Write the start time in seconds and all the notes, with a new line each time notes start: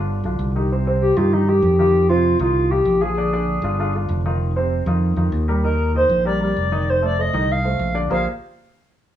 Already playing: G1 D3 D4 F4
0.24 B1 D3 D4 F4
0.39 C2
0.55 D#3 D#4 G4
0.72 C3 C4 C5
0.87 C3 C4 C5
1.01 G4
1.17 G2 D#3 D#4 F4 G4
1.33 D#3 D#4 G4
1.48 D#3 D#4 G4
1.62 F2
1.79 D#3 D#4 F4 G4
2.09 C3 C4 F4 C5
2.39 C2 D#3 D#4 F4
2.71 D#3 D#4 F4 G4
2.85 A#1
3.01 F3 F4 G#4
3.17 D3 D4 D5
3.33 D3 D4 D5
3.62 G1 D3 D4 F4
3.79 D3 D4 F4
3.95 D3 D4 F4
4.09 F1
4.26 D#3 D#4 F4
4.56 C3 C4 C5
4.86 F2 D#3 D#4 F4
5.16 F2 D#3 D#4 F4
5.32 D#2
5.48 G3 G4 A#4
5.63 D#3 D#4 A#4 D#5
5.95 D#3 D#4 C5 D#5
6.09 A#1
6.25 G3 G4 A#4 D5
6.40 G3 G4 A#4 D5
6.56 F1
6.72 D#3 D#4 D#5
6.90 C5
7.02 A3 A4 C5 D5
7.18 A3 A4 C5 D#5
7.33 C2 D#3 D#4 D#5
7.52 F5
7.64 A3 A4 C5
7.79 A#1
7.94 D3 D4 D5
8.10 A#1 A#3 F4 G4 G#4 A#4 C5 F5